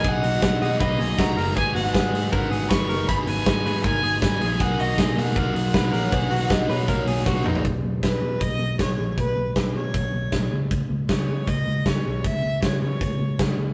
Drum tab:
HH |--o-x-o-x-o-x-o-|x-o-x-o-x-o-x-o-|x-o-x-o-x-o-x-o-|x-o-x-o-x-o-x-o-|
SD |----o-------o---|----o-------o---|----o-------o---|----o-------o---|
T2 |----------------|----------------|----------------|----------------|
FT |----------------|----------------|----------------|----------------|
BD |o---o---o---o---|o---o---o---o---|o---o---o---o---|o---o---o---o---|

HH |x-o-x-o-x-o-----|x---x---x---x---|x---x---x---x---|x---x---x---x---|
SD |----o-------o---|----o-------o---|----o-------o---|----o-------o---|
T2 |--------------o-|----------------|----------------|----------------|
FT |---------------o|----------------|----------------|----------------|
BD |o---o---o---o---|o---o---o---o---|o---o---o---o---|o---o---o---o---|

HH |x---x---x---x---|
SD |----o-------o---|
T2 |----------------|
FT |----------------|
BD |o---o---o---o---|